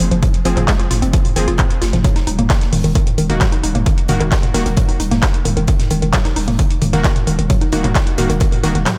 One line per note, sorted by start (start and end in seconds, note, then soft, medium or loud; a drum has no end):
0.00 0.11 F1 loud
0.00 closed hi-hat medium
0.11 0.22 F1 medium
0.11 0.19 F3 loud
0.11 closed hi-hat medium
0.23 0.26 F3 medium
0.23 kick loud
0.23 closed hi-hat medium
0.23 mid tom medium
0.34 closed hi-hat medium
0.45 0.56 F1 loud
0.45 0.51 F3 loud
0.45 0.65 F3 medium
0.45 0.65 C4 medium
0.45 0.65 G#4 medium
0.45 closed hi-hat medium
0.45 open hi-hat loud
0.57 0.68 F1 medium
0.57 0.60 F3 medium
0.57 clap soft
0.57 closed hi-hat soft
0.57 mid tom medium
0.68 0.76 G#3 loud
0.68 kick loud
0.68 snare loud
0.68 clap loud
0.68 closed hi-hat medium
0.80 0.85 F4 medium
0.80 closed hi-hat medium
0.91 1.02 F1 loud
0.91 0.99 F4 medium
0.91 snare soft
0.91 closed hi-hat medium
0.91 mid tom medium
0.91 open hi-hat loud
1.02 1.13 F1 medium
1.02 1.05 C4 medium
1.02 closed hi-hat medium
1.02 closed hi-hat soft
1.13 1.19 F3 medium
1.13 kick loud
1.13 closed hi-hat medium
1.25 mid tom medium
1.25 open hi-hat medium
1.36 1.47 F1 loud
1.36 1.44 D#3 medium
1.36 1.48 F3 loud
1.36 1.48 C4 loud
1.36 1.48 G#4 loud
1.36 closed hi-hat medium
1.36 open hi-hat loud
1.48 1.59 F1 medium
1.48 1.51 F4 loud
1.48 closed hi-hat medium
1.58 1.64 C4 medium
1.58 kick loud
1.58 clap loud
1.58 closed hi-hat medium
1.58 mid tom medium
1.70 closed hi-hat medium
1.82 1.93 F1 loud
1.82 1.85 F4 medium
1.82 snare loud
1.82 closed hi-hat medium
1.82 open hi-hat loud
1.93 2.04 F1 medium
1.93 1.96 F3 medium
1.93 snare soft
1.93 closed hi-hat medium
1.93 mid tom medium
2.04 2.12 F#3 loud
2.04 kick loud
2.04 closed hi-hat medium
2.04 mid tom medium
2.16 2.21 D#4 medium
2.16 snare soft
2.16 closed hi-hat medium
2.27 2.38 D#1 loud
2.27 2.35 D#4 medium
2.27 closed hi-hat medium
2.27 open hi-hat loud
2.39 2.50 D#1 medium
2.39 2.42 A#3 medium
2.39 closed hi-hat medium
2.39 mid tom medium
2.50 2.55 D#3 medium
2.50 kick loud
2.50 snare loud
2.50 clap loud
2.50 closed hi-hat medium
2.61 snare soft
2.61 closed hi-hat soft
2.73 2.84 D#1 loud
2.73 2.81 D#3 medium
2.73 mid tom medium
2.73 open hi-hat loud
2.73 open hi-hat medium
2.84 2.95 D#1 medium
2.84 2.92 D#3 loud
2.84 closed hi-hat medium
2.95 2.99 D#3 medium
2.95 kick loud
2.95 closed hi-hat medium
3.07 closed hi-hat medium
3.07 mid tom medium
3.18 3.29 D#1 loud
3.18 3.23 D#3 loud
3.18 closed hi-hat medium
3.18 open hi-hat loud
3.30 3.41 D#1 medium
3.30 3.33 D#3 medium
3.30 3.49 D#3 medium
3.30 3.49 A#3 medium
3.30 3.49 F#4 medium
3.30 closed hi-hat medium
3.41 3.49 F#3 loud
3.41 kick loud
3.41 snare loud
3.41 clap loud
3.41 closed hi-hat medium
3.41 mid tom medium
3.52 3.57 D#4 medium
3.52 closed hi-hat soft
3.63 3.74 D#1 loud
3.63 3.71 D#4 medium
3.63 closed hi-hat medium
3.63 open hi-hat loud
3.75 3.86 D#1 medium
3.75 3.78 A#3 medium
3.75 closed hi-hat medium
3.75 mid tom medium
3.86 3.92 D#3 medium
3.86 kick loud
3.86 closed hi-hat medium
3.98 closed hi-hat medium
4.08 4.20 D#1 loud
4.08 4.17 D#3 medium
4.08 4.28 D#3 medium
4.08 4.28 A#3 medium
4.08 4.28 F#4 medium
4.08 closed hi-hat medium
4.08 mid tom medium
4.08 open hi-hat loud
4.20 4.31 D#1 medium
4.20 4.28 D#3 loud
4.20 clap soft
4.20 closed hi-hat soft
4.32 4.35 D#3 medium
4.32 kick loud
4.32 snare loud
4.32 clap loud
4.32 closed hi-hat medium
4.43 closed hi-hat medium
4.43 mid tom medium
4.54 4.65 D#1 loud
4.54 4.67 D#3 medium
4.54 4.60 D#3 loud
4.54 4.67 A#3 medium
4.54 4.67 F#4 loud
4.54 snare soft
4.54 closed hi-hat medium
4.54 open hi-hat loud
4.66 4.77 D#1 medium
4.66 4.69 D#3 medium
4.66 closed hi-hat soft
4.66 closed hi-hat medium
4.77 4.85 F#3 loud
4.77 kick loud
4.77 closed hi-hat medium
4.77 mid tom medium
4.89 4.94 D#4 medium
4.89 open hi-hat medium
5.00 5.11 D#1 loud
5.00 5.08 D#4 medium
5.00 closed hi-hat medium
5.00 open hi-hat loud
5.11 5.22 D#1 medium
5.11 5.15 A#3 medium
5.11 snare soft
5.11 closed hi-hat medium
5.11 mid tom medium
5.22 5.28 D#3 medium
5.22 kick loud
5.22 snare loud
5.22 clap loud
5.22 closed hi-hat medium
5.34 closed hi-hat soft
5.45 5.56 D#1 loud
5.45 5.53 D#3 medium
5.45 closed hi-hat medium
5.45 mid tom medium
5.45 open hi-hat loud
5.57 5.68 D#1 medium
5.57 5.65 D#3 loud
5.57 closed hi-hat medium
5.67 5.71 D#3 medium
5.67 kick loud
5.67 closed hi-hat medium
5.80 snare soft
5.80 closed hi-hat medium
5.80 mid tom medium
5.90 6.02 D#1 loud
5.90 5.96 D#3 loud
5.90 closed hi-hat medium
5.90 open hi-hat loud
6.02 6.13 D#1 medium
6.02 6.05 D#3 medium
6.02 closed hi-hat medium
6.13 6.21 F#3 loud
6.13 kick loud
6.13 snare loud
6.13 clap loud
6.13 closed hi-hat loud
6.13 closed hi-hat medium
6.13 mid tom medium
6.24 6.30 D#4 medium
6.24 snare soft
6.24 closed hi-hat medium
6.36 6.47 D#1 loud
6.36 6.44 D#4 medium
6.36 open hi-hat loud
6.36 open hi-hat medium
6.48 6.59 D#1 medium
6.48 6.51 A#3 medium
6.48 closed hi-hat medium
6.48 mid tom medium
6.59 6.64 D#3 medium
6.59 kick loud
6.59 closed hi-hat medium
6.70 closed hi-hat medium
6.82 6.93 D#1 loud
6.82 6.90 D#3 medium
6.82 closed hi-hat medium
6.82 mid tom medium
6.82 open hi-hat loud
6.93 7.04 D#1 medium
6.93 7.12 D#3 medium
6.93 7.01 D#3 loud
6.93 7.12 A#3 medium
6.93 7.12 F#4 medium
6.93 closed hi-hat medium
7.04 7.08 D#3 medium
7.04 kick loud
7.04 snare loud
7.04 clap loud
7.04 closed hi-hat medium
7.16 closed hi-hat medium
7.16 mid tom medium
7.27 7.38 D#1 loud
7.27 7.33 D#3 loud
7.27 closed hi-hat medium
7.27 open hi-hat loud
7.39 7.50 D#1 medium
7.39 7.42 D#3 medium
7.39 closed hi-hat medium
7.50 7.58 F#3 loud
7.50 kick loud
7.50 closed hi-hat medium
7.50 closed hi-hat loud
7.50 mid tom medium
7.61 7.67 D#4 medium
7.61 closed hi-hat medium
7.72 7.84 D#1 loud
7.72 7.92 D#3 medium
7.72 7.92 A#3 medium
7.72 7.81 D#4 medium
7.72 7.92 F#4 medium
7.72 closed hi-hat medium
7.72 open hi-hat loud
7.84 7.95 D#1 medium
7.84 7.87 A#3 medium
7.84 clap soft
7.84 closed hi-hat medium
7.84 mid tom medium
7.95 8.01 D#3 medium
7.95 kick loud
7.95 snare loud
7.95 clap loud
7.95 closed hi-hat medium
8.07 closed hi-hat medium
8.17 8.29 D#1 loud
8.17 8.30 D#3 loud
8.17 8.26 D#3 medium
8.17 8.30 A#3 medium
8.17 8.30 F#4 loud
8.17 snare medium
8.17 closed hi-hat medium
8.17 mid tom medium
8.17 open hi-hat loud
8.30 8.41 D#1 medium
8.30 8.37 D#3 loud
8.30 closed hi-hat medium
8.30 closed hi-hat soft
8.40 8.44 D#3 medium
8.40 kick loud
8.40 closed hi-hat medium
8.40 closed hi-hat loud
8.52 mid tom medium
8.52 open hi-hat medium
8.63 8.74 D#1 loud
8.63 8.69 D#3 loud
8.63 8.76 D#3 loud
8.63 8.76 A#3 medium
8.63 8.76 F#4 loud
8.63 closed hi-hat medium
8.63 open hi-hat loud
8.75 8.86 D#1 medium
8.75 8.78 D#3 medium
8.75 closed hi-hat medium
8.86 8.94 F#3 loud
8.86 snare loud
8.86 clap loud
8.86 closed hi-hat medium
8.86 mid tom medium